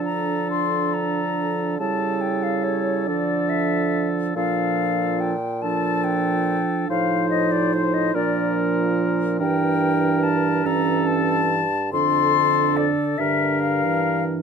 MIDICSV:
0, 0, Header, 1, 6, 480
1, 0, Start_track
1, 0, Key_signature, -1, "minor"
1, 0, Tempo, 875912
1, 986, Time_signature, 6, 3, 24, 8
1, 987, Tempo, 853485
1, 2907, Tempo, 836820
1, 6267, Tempo, 853485
1, 8150, End_track
2, 0, Start_track
2, 0, Title_t, "Flute"
2, 0, Program_c, 0, 73
2, 26, Note_on_c, 0, 82, 51
2, 265, Note_off_c, 0, 82, 0
2, 276, Note_on_c, 0, 84, 52
2, 513, Note_on_c, 0, 82, 54
2, 521, Note_off_c, 0, 84, 0
2, 977, Note_off_c, 0, 82, 0
2, 980, Note_on_c, 0, 81, 55
2, 1218, Note_on_c, 0, 79, 51
2, 1227, Note_off_c, 0, 81, 0
2, 1341, Note_on_c, 0, 77, 49
2, 1349, Note_off_c, 0, 79, 0
2, 1457, Note_on_c, 0, 73, 47
2, 1466, Note_off_c, 0, 77, 0
2, 1696, Note_on_c, 0, 74, 51
2, 1705, Note_off_c, 0, 73, 0
2, 1939, Note_on_c, 0, 76, 55
2, 1947, Note_off_c, 0, 74, 0
2, 2268, Note_off_c, 0, 76, 0
2, 2422, Note_on_c, 0, 77, 62
2, 2900, Note_on_c, 0, 79, 55
2, 2908, Note_off_c, 0, 77, 0
2, 3139, Note_on_c, 0, 81, 61
2, 3148, Note_off_c, 0, 79, 0
2, 3381, Note_on_c, 0, 79, 68
2, 3389, Note_off_c, 0, 81, 0
2, 3866, Note_off_c, 0, 79, 0
2, 3869, Note_on_c, 0, 77, 64
2, 4099, Note_off_c, 0, 77, 0
2, 4102, Note_on_c, 0, 75, 61
2, 4227, Note_on_c, 0, 74, 57
2, 4235, Note_off_c, 0, 75, 0
2, 4352, Note_on_c, 0, 72, 58
2, 4360, Note_off_c, 0, 74, 0
2, 4468, Note_on_c, 0, 75, 60
2, 4477, Note_off_c, 0, 72, 0
2, 4587, Note_off_c, 0, 75, 0
2, 4592, Note_on_c, 0, 74, 55
2, 4825, Note_off_c, 0, 74, 0
2, 5311, Note_on_c, 0, 79, 69
2, 5785, Note_on_c, 0, 81, 66
2, 5793, Note_off_c, 0, 79, 0
2, 6032, Note_on_c, 0, 82, 64
2, 6041, Note_off_c, 0, 81, 0
2, 6265, Note_on_c, 0, 81, 69
2, 6274, Note_off_c, 0, 82, 0
2, 6745, Note_off_c, 0, 81, 0
2, 6748, Note_on_c, 0, 84, 76
2, 7219, Note_on_c, 0, 74, 55
2, 7228, Note_off_c, 0, 84, 0
2, 7452, Note_on_c, 0, 76, 59
2, 7460, Note_off_c, 0, 74, 0
2, 7688, Note_on_c, 0, 77, 63
2, 7697, Note_off_c, 0, 76, 0
2, 8045, Note_off_c, 0, 77, 0
2, 8150, End_track
3, 0, Start_track
3, 0, Title_t, "Oboe"
3, 0, Program_c, 1, 68
3, 0, Note_on_c, 1, 69, 37
3, 966, Note_off_c, 1, 69, 0
3, 987, Note_on_c, 1, 69, 39
3, 1692, Note_off_c, 1, 69, 0
3, 1710, Note_on_c, 1, 69, 43
3, 2414, Note_off_c, 1, 69, 0
3, 2427, Note_on_c, 1, 69, 41
3, 2980, Note_off_c, 1, 69, 0
3, 3147, Note_on_c, 1, 69, 48
3, 3847, Note_off_c, 1, 69, 0
3, 3873, Note_on_c, 1, 72, 48
3, 4589, Note_on_c, 1, 70, 50
3, 4598, Note_off_c, 1, 72, 0
3, 5300, Note_off_c, 1, 70, 0
3, 5304, Note_on_c, 1, 70, 52
3, 6027, Note_on_c, 1, 69, 49
3, 6035, Note_off_c, 1, 70, 0
3, 6593, Note_off_c, 1, 69, 0
3, 6742, Note_on_c, 1, 69, 49
3, 7464, Note_on_c, 1, 70, 46
3, 7473, Note_off_c, 1, 69, 0
3, 8150, Note_off_c, 1, 70, 0
3, 8150, End_track
4, 0, Start_track
4, 0, Title_t, "Clarinet"
4, 0, Program_c, 2, 71
4, 0, Note_on_c, 2, 62, 35
4, 963, Note_off_c, 2, 62, 0
4, 988, Note_on_c, 2, 64, 36
4, 1707, Note_on_c, 2, 62, 42
4, 1715, Note_off_c, 2, 64, 0
4, 2424, Note_off_c, 2, 62, 0
4, 2427, Note_on_c, 2, 62, 40
4, 2980, Note_off_c, 2, 62, 0
4, 3146, Note_on_c, 2, 62, 47
4, 3873, Note_on_c, 2, 63, 44
4, 3882, Note_off_c, 2, 62, 0
4, 4586, Note_off_c, 2, 63, 0
4, 4589, Note_on_c, 2, 62, 49
4, 5292, Note_off_c, 2, 62, 0
4, 5307, Note_on_c, 2, 62, 48
4, 6028, Note_on_c, 2, 61, 46
4, 6037, Note_off_c, 2, 62, 0
4, 6594, Note_off_c, 2, 61, 0
4, 6751, Note_on_c, 2, 62, 44
4, 7438, Note_off_c, 2, 62, 0
4, 7460, Note_on_c, 2, 62, 44
4, 8150, Note_off_c, 2, 62, 0
4, 8150, End_track
5, 0, Start_track
5, 0, Title_t, "French horn"
5, 0, Program_c, 3, 60
5, 0, Note_on_c, 3, 53, 38
5, 962, Note_off_c, 3, 53, 0
5, 985, Note_on_c, 3, 55, 38
5, 1707, Note_on_c, 3, 53, 40
5, 1716, Note_off_c, 3, 55, 0
5, 2424, Note_off_c, 3, 53, 0
5, 2427, Note_on_c, 3, 53, 45
5, 2980, Note_off_c, 3, 53, 0
5, 3149, Note_on_c, 3, 53, 47
5, 3848, Note_off_c, 3, 53, 0
5, 3868, Note_on_c, 3, 53, 51
5, 4571, Note_off_c, 3, 53, 0
5, 4590, Note_on_c, 3, 53, 51
5, 5309, Note_on_c, 3, 52, 48
5, 5317, Note_off_c, 3, 53, 0
5, 6025, Note_off_c, 3, 52, 0
5, 6028, Note_on_c, 3, 52, 46
5, 6583, Note_off_c, 3, 52, 0
5, 6747, Note_on_c, 3, 50, 48
5, 7436, Note_off_c, 3, 50, 0
5, 7460, Note_on_c, 3, 50, 41
5, 7823, Note_on_c, 3, 52, 41
5, 7831, Note_off_c, 3, 50, 0
5, 8150, Note_off_c, 3, 52, 0
5, 8150, End_track
6, 0, Start_track
6, 0, Title_t, "Bassoon"
6, 0, Program_c, 4, 70
6, 0, Note_on_c, 4, 50, 38
6, 964, Note_off_c, 4, 50, 0
6, 987, Note_on_c, 4, 49, 39
6, 1703, Note_on_c, 4, 50, 40
6, 1711, Note_off_c, 4, 49, 0
6, 2423, Note_off_c, 4, 50, 0
6, 2427, Note_on_c, 4, 46, 45
6, 3691, Note_off_c, 4, 46, 0
6, 3873, Note_on_c, 4, 45, 51
6, 4566, Note_off_c, 4, 45, 0
6, 4588, Note_on_c, 4, 46, 51
6, 5291, Note_off_c, 4, 46, 0
6, 5309, Note_on_c, 4, 43, 49
6, 6012, Note_off_c, 4, 43, 0
6, 6026, Note_on_c, 4, 43, 46
6, 6733, Note_off_c, 4, 43, 0
6, 6748, Note_on_c, 4, 41, 47
6, 7296, Note_off_c, 4, 41, 0
6, 7459, Note_on_c, 4, 43, 45
6, 8150, Note_off_c, 4, 43, 0
6, 8150, End_track
0, 0, End_of_file